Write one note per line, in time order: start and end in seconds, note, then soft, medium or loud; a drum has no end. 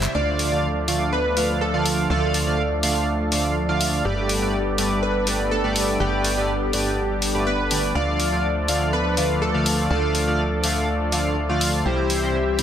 0.00 0.12 C3 medium
0.00 0.11 E3 medium
0.00 0.11 G3 medium
0.00 0.12 G3 medium
0.00 0.11 C4 medium
0.00 0.12 E4 medium
0.00 0.11 G4 medium
0.00 0.11 C5 loud
0.00 0.12 C5 medium
0.00 0.16 C5 medium
0.00 0.12 E5 loud
0.00 clap medium
0.00 tambourine medium
0.15 2.08 D2 medium
0.15 0.49 D3 loud
0.15 4.01 F3 medium
0.15 0.49 A3 medium
0.15 4.01 A3 medium
0.15 11.82 D4 medium
0.15 0.49 F4 medium
0.15 7.91 A4 medium
0.15 0.88 D5 loud
0.15 0.49 D5 medium
0.15 7.91 D5 medium
0.15 0.49 F5 loud
0.39 open hi-hat loud
0.52 0.66 D3 medium
0.52 0.66 A3 medium
0.52 0.66 F4 medium
0.52 0.66 D5 medium
0.52 0.66 F5 loud
0.88 1.11 D3 medium
0.88 1.11 A3 medium
0.88 1.11 F4 medium
0.88 1.11 D5 medium
0.88 1.11 F5 medium
0.88 open hi-hat medium
1.12 1.63 B4 loud
1.37 1.60 D3 medium
1.37 1.60 A3 medium
1.37 1.60 F4 medium
1.37 1.60 D5 medium
1.37 1.60 F5 medium
1.37 open hi-hat loud
1.61 2.09 A4 medium
1.74 2.07 D3 medium
1.74 2.07 A3 medium
1.74 2.07 F4 medium
1.74 2.07 D5 medium
1.74 2.07 F5 medium
1.86 open hi-hat loud
2.10 4.03 D2 medium
2.10 2.44 D3 loud
2.10 2.44 A3 medium
2.10 2.44 F4 medium
2.10 2.55 A4 medium
2.10 2.44 D5 medium
2.10 2.44 F5 loud
2.34 open hi-hat loud
2.47 2.61 D3 medium
2.47 2.61 A3 medium
2.47 2.61 F4 medium
2.47 2.61 D5 medium
2.47 2.61 F5 loud
2.83 3.06 D3 medium
2.83 3.06 A3 medium
2.83 3.06 F4 medium
2.83 3.06 D5 medium
2.83 3.06 F5 medium
2.83 open hi-hat loud
3.32 3.55 D3 medium
3.32 3.55 A3 medium
3.32 3.55 F4 medium
3.32 3.55 D5 medium
3.32 3.55 F5 medium
3.32 open hi-hat loud
3.69 4.02 D3 medium
3.69 4.02 A3 medium
3.69 4.02 F4 medium
3.69 4.02 D5 medium
3.69 4.02 F5 loud
3.81 open hi-hat loud
4.05 5.98 G1 medium
4.05 4.39 G2 loud
4.05 7.91 G3 medium
4.05 4.39 A3 medium
4.05 7.91 B3 medium
4.05 4.39 G4 medium
4.05 4.99 G4 medium
4.05 4.39 B4 medium
4.05 4.39 D5 loud
4.29 open hi-hat loud
4.42 4.56 G2 medium
4.42 4.56 A3 medium
4.42 4.56 G4 medium
4.42 4.56 B4 medium
4.42 4.56 D5 medium
4.78 5.01 G2 medium
4.78 5.01 A3 medium
4.78 5.01 G4 medium
4.78 5.01 B4 medium
4.78 5.01 D5 loud
4.78 open hi-hat loud
5.03 5.53 B4 loud
5.27 5.50 G2 medium
5.27 5.50 A3 medium
5.27 5.50 G4 medium
5.27 5.50 B4 medium
5.27 5.50 D5 medium
5.27 open hi-hat loud
5.51 6.02 A4 loud
5.64 5.97 G2 medium
5.64 5.97 A3 medium
5.64 5.97 G4 medium
5.64 5.97 B4 medium
5.64 5.97 D5 loud
5.76 open hi-hat loud
6.00 7.93 G1 medium
6.00 6.34 G2 loud
6.00 6.34 A3 medium
6.00 6.34 G4 medium
6.00 7.48 G4 loud
6.00 6.34 B4 medium
6.00 6.34 D5 loud
6.25 open hi-hat loud
6.37 6.51 G2 medium
6.37 6.51 A3 medium
6.37 6.51 G4 medium
6.37 6.51 B4 medium
6.37 6.51 D5 loud
6.73 6.96 G2 medium
6.73 6.96 A3 medium
6.73 6.96 G4 medium
6.73 6.96 B4 medium
6.73 6.96 D5 loud
6.73 open hi-hat loud
7.22 open hi-hat loud
7.35 7.49 G2 medium
7.35 7.49 A3 medium
7.35 7.49 G4 medium
7.35 7.49 B4 medium
7.35 7.49 D5 medium
7.47 7.97 B4 loud
7.71 7.92 D3 medium
7.71 7.92 A3 medium
7.71 7.92 G4 medium
7.71 7.92 B4 medium
7.71 7.92 D5 medium
7.71 open hi-hat loud
7.95 9.88 D2 medium
7.95 8.29 D3 medium
7.95 11.82 F3 medium
7.95 8.29 A3 medium
7.95 11.82 A3 medium
7.95 8.29 F4 medium
7.95 11.82 A4 medium
7.95 11.82 D5 medium
7.95 8.29 D5 medium
7.95 8.68 D5 loud
7.95 8.29 F5 loud
8.20 open hi-hat loud
8.32 8.46 D3 medium
8.32 8.46 A3 medium
8.32 8.46 F4 medium
8.32 8.46 D5 medium
8.32 8.46 F5 loud
8.68 8.92 D3 medium
8.68 8.92 A3 medium
8.68 8.92 F4 medium
8.68 8.92 D5 medium
8.68 8.92 F5 loud
8.68 open hi-hat medium
8.93 9.43 B4 loud
9.17 9.40 D3 medium
9.17 9.40 A3 medium
9.17 9.40 F4 medium
9.17 9.40 D5 medium
9.17 9.40 F5 medium
9.17 open hi-hat loud
9.42 9.90 A4 loud
9.54 9.88 D3 medium
9.54 9.88 A3 medium
9.54 9.88 F4 medium
9.54 9.88 D5 medium
9.54 9.88 F5 loud
9.66 open hi-hat loud
9.90 11.83 D2 medium
9.90 10.24 D3 medium
9.90 10.24 A3 medium
9.90 10.24 F4 medium
9.90 10.36 A4 medium
9.90 10.24 D5 medium
9.90 10.24 F5 loud
10.15 open hi-hat medium
10.27 10.41 D3 medium
10.27 10.41 A3 medium
10.27 10.41 F4 medium
10.27 10.41 D5 medium
10.27 10.41 F5 loud
10.64 10.87 D3 medium
10.64 10.87 A3 medium
10.64 10.87 F4 medium
10.64 10.87 D5 medium
10.64 10.87 F5 loud
10.64 open hi-hat loud
11.12 11.35 D3 medium
11.12 11.35 A3 medium
11.12 11.35 F4 medium
11.12 11.35 D5 medium
11.12 11.35 F5 medium
11.12 open hi-hat loud
11.49 11.83 D3 medium
11.49 11.83 A3 medium
11.49 11.83 F4 medium
11.49 11.83 D5 medium
11.49 11.83 F5 loud
11.61 open hi-hat loud
11.85 12.63 C2 medium
11.85 12.19 C3 loud
11.85 12.63 E3 medium
11.85 12.63 G3 medium
11.85 12.19 G3 medium
11.85 12.63 C4 medium
11.85 12.19 C4 medium
11.85 12.19 E4 medium
11.85 12.63 G4 medium
11.85 12.63 G4 loud
11.85 12.19 C5 loud
11.85 12.63 E5 medium
12.10 open hi-hat loud
12.22 12.37 C3 medium
12.22 12.37 G3 medium
12.22 12.37 C4 medium
12.22 12.37 E4 medium
12.22 12.37 C5 loud
12.59 12.63 C3 medium
12.59 12.63 G3 medium
12.59 12.63 C4 medium
12.59 12.63 E4 medium
12.59 12.63 C5 loud
12.59 open hi-hat medium